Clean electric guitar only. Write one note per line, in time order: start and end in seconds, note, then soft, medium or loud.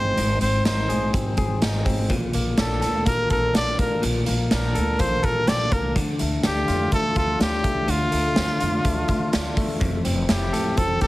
0.00 0.16 G#2 medium
0.00 0.40 C4 medium
0.00 0.64 D#4 medium
0.00 0.88 G#4 medium
0.17 2.10 G#2 loud
0.41 1.12 C4 medium
0.65 1.61 D#4 medium
0.89 1.36 G#4 medium
1.13 1.84 C4 medium
1.38 2.15 G#4 medium
1.62 2.15 D#4 medium
1.85 2.14 C4 medium
2.10 4.01 A#2 medium
2.34 3.04 A#3 medium
2.58 3.53 D4 medium
2.81 3.30 A4 medium
3.06 3.77 A#3 medium
3.30 4.75 A4 medium
3.54 4.51 D4 medium
3.78 4.25 A#3 medium
4.02 5.95 A#2 medium
4.27 4.98 A#3 medium
4.51 5.47 D4 medium
4.75 5.22 A4 medium
4.99 5.70 A#3 medium
5.23 6.68 A4 medium
5.47 5.59 C4 medium
5.59 6.00 D4 medium
5.72 6.00 A#3 medium
5.96 7.87 D3 medium
6.20 6.92 A3 medium
6.44 7.38 D4 medium
6.68 7.16 F4 medium
6.92 7.63 A3 medium
7.16 8.60 F4 medium
7.40 8.36 D4 medium
7.64 8.11 A3 medium
7.88 9.81 D3 medium
8.12 8.84 A3 medium
8.36 8.48 C4 medium
8.48 9.32 D4 soft
8.60 9.08 F4 medium
8.85 9.57 A3 medium
9.08 10.32 F4 medium
9.33 9.86 D4 medium
9.57 10.04 A3 medium
9.81 11.07 F2 medium
10.05 10.77 C4 medium
10.29 11.07 E4 medium
10.53 11.01 A4 medium
10.77 11.07 C4 medium
11.01 11.07 G4 medium